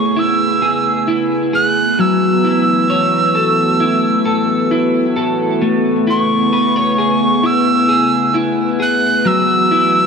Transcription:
Already playing: C#3 A3 B3 E4 G#4 B4 C#5 C#6
0.16 E4 E6
0.62 G#4
1.08 E4
1.53 G#4 F#6
1.99 E3 F#3 F#4 E6
2.44 E4
2.90 C#5
3.35 A4
3.80 E4
4.25 A4
4.71 E4
5.16 A4
5.62 C#3 A3
6.07 E4 C#6
6.53 B4
6.76 C#5
6.98 G#4
7.43 E4 E6
7.89 G#4
8.34 E4
8.80 G#4 F#6
9.25 E3 F#3 F#4 E6
9.71 E4

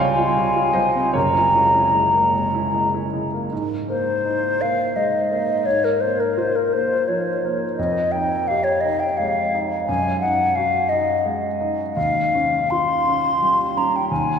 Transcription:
Already playing: C#2 C4 F4 D#5 G5 G#5
0.00 G3 C#5 F5 G#5
0.18 F4
0.37 G3
0.56 F4
0.73 G3 C5 D#5
0.96 C4
1.13 F#1 F#2 A#4 C#5 A#5
1.35 E4
1.55 G#3
1.75 E4
1.94 G#3
2.14 A#3
2.34 G#3
2.55 E4
2.74 G#3
2.94 E4
3.14 G#3
3.34 A#3
3.53 G#2
3.89 A#3 C5
4.26 D#4
4.61 A#3 F5
4.96 G#3 D#5
5.31 A#3
5.66 G#2 C#5
5.84 A#4
6.01 A#3 C5
6.20 A#4
6.38 F4 C5
6.56 A#4
6.73 A#3 C5
7.08 F3 C#5
7.44 A#3
7.77 F2 D#5
8.12 D#4 G5
8.48 G4 F5
8.64 C#5
8.81 D#5
8.85 D#4
9.00 G5
9.17 G#3 F5
9.54 D#4
9.87 F#2 G#5
10.20 D#4 F#5
10.55 F#4 F5
10.89 D#4 D#5
11.26 G#3
11.60 D#4
11.95 D#2 F5
12.35 C#4
12.70 F4 C6
13.08 C#4
13.42 G3
13.76 C#4 A#5
13.96 G5
14.10 D#2 G#5

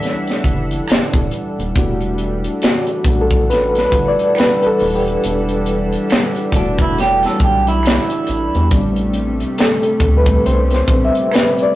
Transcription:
Already playing: E3 G3 A3 D4 G4 A4 E5 F#5
0.02 snare, closed hi-hat, shaker
0.26 snare, closed hi-hat, shaker
0.44 F#1, kick, closed hi-hat, shaker
0.71 closed hi-hat, shaker
0.88 E1, finger snap, snare, closed hi-hat, shaker
0.92 finger snap
1.14 E1, kick, closed hi-hat, shaker
1.31 closed hi-hat, shaker
1.58 D#1, closed hi-hat, shaker
1.75 E1 E3 G3 A3 D4 F#4 A4 F#5, kick, closed hi-hat, shaker
2.00 closed hi-hat, shaker
2.18 closed hi-hat, shaker
2.44 closed hi-hat, shaker
2.62 F#4, finger snap, snare, closed hi-hat, shaker
2.65 finger snap
2.87 closed hi-hat, shaker
3.04 B1 G3 A3 D4 F#4, kick, closed hi-hat
3.21 A4
3.30 kick, closed hi-hat, shaker
3.50 A1 B4, snare, closed hi-hat, shaker
3.74 snare, closed hi-hat, shaker
3.79 B4
3.92 G1, kick, closed hi-hat, shaker
4.08 D5
4.19 closed hi-hat, shaker
4.35 B4, finger snap, closed hi-hat, shaker
4.40 finger snap, snare
4.63 A4 B4, closed hi-hat, shaker
4.79 D#1, open hi-hat, shaker
4.95 G4
5.06 closed hi-hat, shaker
5.23 E1, closed hi-hat, shaker
5.49 closed hi-hat, shaker
5.66 closed hi-hat, shaker
5.93 closed hi-hat, shaker
6.10 finger snap, snare, closed hi-hat, shaker
6.13 finger snap
6.35 closed hi-hat, shaker
6.52 E1 G3 A3 D4 F#4, kick, closed hi-hat
6.78 E4, kick, closed hi-hat, shaker
6.98 G4, snare, closed hi-hat, shaker
7.21 snare, closed hi-hat, shaker
7.26 A4
7.40 B1 G4, kick, closed hi-hat, shaker
7.66 E4, closed hi-hat, shaker
7.83 finger snap, closed hi-hat, shaker
7.87 finger snap, snare
8.10 closed hi-hat, shaker
8.27 A1, closed hi-hat, shaker
8.53 E2, closed hi-hat, shaker
8.71 A1 C3 G3 A3 B3 C4 D4, kick, closed hi-hat, shaker
8.96 closed hi-hat, shaker
9.13 closed hi-hat, shaker
9.40 closed hi-hat, shaker
9.58 A4, finger snap, snare, closed hi-hat, shaker
9.61 finger snap
9.83 closed hi-hat, shaker
10.00 D2, kick, closed hi-hat
10.17 B4
10.26 kick, closed hi-hat, shaker
10.46 C2 G3 B3 C4 D4 C5, closed hi-hat, shaker
10.70 snare, closed hi-hat, shaker
10.76 C5
10.88 B1, kick, closed hi-hat, shaker
11.05 E5
11.14 closed hi-hat, shaker
11.31 B4, finger snap, snare, closed hi-hat, shaker
11.36 finger snap
11.58 closed hi-hat, shaker
11.63 D5

